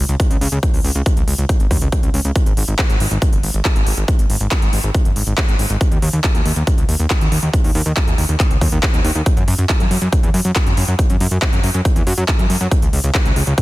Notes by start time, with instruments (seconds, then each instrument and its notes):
0.09 analog synth bass C#2, closed hi-hat
0.20 kick, closed hi-hat
0.30 analog synth bass C#2, closed hi-hat
0.41 analog synth bass C#2, open hi-hat
0.52 analog synth bass C#2, closed hi-hat
0.63 kick, closed hi-hat
0.74 analog synth bass C#2, open hi-hat
0.84 analog synth bass C#2, open hi-hat
0.95 analog synth bass C#2, closed hi-hat
1.06 kick, closed hi-hat
1.17 analog synth bass C#2, closed hi-hat
1.28 analog synth bass C#2, open hi-hat
1.38 analog synth bass C#2, closed hi-hat
1.49 kick, closed hi-hat
1.60 analog synth bass G#1, closed hi-hat
1.71 analog synth bass D#2, kick, open hi-hat
1.82 analog synth bass C#2, closed hi-hat
1.92 kick, closed hi-hat
2.03 analog synth bass C#2, closed hi-hat
2.14 analog synth bass C#2, open hi-hat
2.25 analog synth bass C#2, closed hi-hat
2.36 kick, closed hi-hat
2.46 analog synth bass G#1, closed hi-hat
2.57 analog synth bass G#1, open hi-hat
2.68 analog synth bass G#1, closed hi-hat
2.79 kick, clap, closed hi-hat
2.90 analog synth bass G#1, closed hi-hat
3.00 analog synth bass G#1, open hi-hat
3.11 analog synth bass G#1, closed hi-hat
3.22 kick, closed hi-hat
3.33 analog synth bass F#1, closed hi-hat
3.43 analog synth bass G#1, open hi-hat
3.54 analog synth bass G#1, closed hi-hat
3.65 kick, clap, closed hi-hat
3.76 analog synth bass G#1, closed hi-hat
3.87 analog synth bass G#1, open hi-hat
3.97 analog synth bass G#1, closed hi-hat
4.08 kick, closed hi-hat
4.19 analog synth bass G#1, closed hi-hat
4.30 analog synth bass G#1, open hi-hat
4.41 analog synth bass G#1, closed hi-hat
4.51 kick, clap, closed hi-hat
4.62 analog synth bass G#1, closed hi-hat
4.73 analog synth bass G#1, open hi-hat
4.84 analog synth bass G#1, closed hi-hat
4.95 kick, closed hi-hat
5.05 analog synth bass F#1, closed hi-hat
5.16 analog synth bass G#1, open hi-hat
5.27 analog synth bass G#1, closed hi-hat
5.38 kick, clap, closed hi-hat
5.48 analog synth bass G#1, closed hi-hat
5.59 analog synth bass G#1, open hi-hat
5.70 analog synth bass G#1, closed hi-hat
5.81 kick, closed hi-hat
5.92 analog synth bass D#2, closed hi-hat
6.02 analog synth bass D#2, open hi-hat
6.13 analog synth bass D#2, closed hi-hat
6.24 kick, clap, closed hi-hat
6.35 analog synth bass D#2, closed hi-hat
6.46 analog synth bass D#2, open hi-hat
6.56 analog synth bass D#2, closed hi-hat
6.67 kick, closed hi-hat
6.78 analog synth bass C#2, closed hi-hat
6.89 analog synth bass D#2, open hi-hat
7.00 analog synth bass D#2, closed hi-hat
7.10 kick, clap, closed hi-hat
7.21 analog synth bass D#2, closed hi-hat
7.32 analog synth bass D#2, open hi-hat
7.43 analog synth bass D#2, closed hi-hat
7.54 kick, closed hi-hat
7.64 analog synth bass D#2, open hi-hat
7.75 analog synth bass D#2, open hi-hat
7.86 analog synth bass D#2, closed hi-hat
7.97 kick, clap, closed hi-hat
8.07 analog synth bass D#2, closed hi-hat
8.18 analog synth bass D#2, open hi-hat
8.29 analog synth bass D#2, closed hi-hat
8.40 kick, clap, closed hi-hat
8.51 analog synth bass C#2, closed hi-hat
8.61 analog synth bass D#2, kick, open hi-hat
8.72 analog synth bass D#2, closed hi-hat
8.83 kick, clap, closed hi-hat
8.94 analog synth bass D#2, closed hi-hat
9.05 analog synth bass D#2, open hi-hat
9.15 analog synth bass D#2, closed hi-hat
9.26 kick, closed hi-hat
9.37 analog synth bass F#2, closed hi-hat
9.48 analog synth bass F#2, open hi-hat
9.59 analog synth bass F#2, closed hi-hat
9.69 kick, clap, closed hi-hat
9.80 analog synth bass F#2, closed hi-hat
9.91 analog synth bass F#2, open hi-hat
10.02 analog synth bass F#2, closed hi-hat
10.13 kick, closed hi-hat
10.23 analog synth bass E2, closed hi-hat
10.34 analog synth bass F#2, open hi-hat
10.45 analog synth bass F#2, closed hi-hat
10.56 kick, clap, closed hi-hat
10.67 analog synth bass F#2, closed hi-hat
10.77 analog synth bass F#2, open hi-hat
10.88 analog synth bass F#2, closed hi-hat
10.99 kick, closed hi-hat
11.10 analog synth bass F#2, closed hi-hat
11.20 analog synth bass F#2, open hi-hat
11.31 analog synth bass F#2, closed hi-hat
11.42 kick, clap, closed hi-hat
11.53 analog synth bass F#2, closed hi-hat
11.64 analog synth bass F#2, open hi-hat
11.74 analog synth bass F#2, closed hi-hat
11.85 kick, closed hi-hat
11.96 analog synth bass E2, closed hi-hat
12.07 analog synth bass F#2, open hi-hat
12.18 analog synth bass F#2, closed hi-hat
12.28 kick, clap, closed hi-hat
12.39 analog synth bass F#2, closed hi-hat
12.50 analog synth bass F#2, open hi-hat
12.61 analog synth bass F#2, closed hi-hat
12.71 kick, closed hi-hat
12.82 analog synth bass C#2, closed hi-hat
12.93 analog synth bass C#2, open hi-hat
13.04 analog synth bass C#2, closed hi-hat
13.15 kick, clap, closed hi-hat
13.25 analog synth bass C#2, closed hi-hat
13.36 analog synth bass C#2, open hi-hat
13.47 analog synth bass C#2, closed hi-hat
13.58 kick, closed hi-hat